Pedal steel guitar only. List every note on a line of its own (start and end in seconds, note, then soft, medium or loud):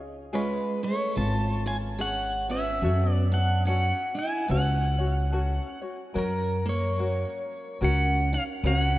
0.35 0.84 B4 medium
0.84 1.18 C#5 medium
1.18 1.67 A5 loud
1.67 1.76 G#5 loud
2.01 2.52 F#5 medium
2.51 3.12 E5 medium
3.12 3.33 D5 medium
3.34 3.66 F#5 medium
3.67 4.18 F#5 medium
4.19 4.51 G#5 medium
4.51 5.79 F#5 medium
6.18 6.68 A#4 medium
6.69 7.87 C#5 medium
7.84 8.34 F#5 loud
8.34 8.43 F5 medium
8.67 8.79 F5 medium
8.79 8.99 F#5 medium